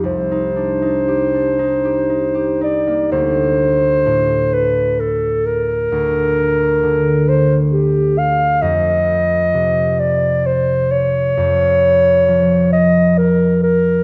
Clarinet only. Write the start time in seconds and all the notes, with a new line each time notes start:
0.06 C5
2.63 D5
3.12 C5
4.54 B4
5.00 A4
5.46 A#4
7.29 C5
7.72 G4
8.18 F5
8.62 D#5
10.00 D5
10.46 C5
10.92 C#5
12.73 D#5
13.18 A#4
13.63 A#4